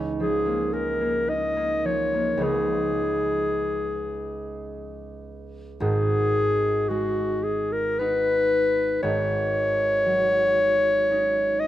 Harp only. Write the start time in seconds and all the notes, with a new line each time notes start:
Already playing: C#2 C#4 D#4
0.20 F3
0.46 A#3
0.73 G#3
1.01 A#3
1.28 D#4
1.57 A#3
1.85 F3
2.14 A#3
2.38 C#2 F3 B3 C#4
2.42 D#4
5.80 G#1 G#2
6.90 G#3
7.99 B3 D#4
9.02 G#1 G#2
10.06 F#3
11.11 C#4 D#4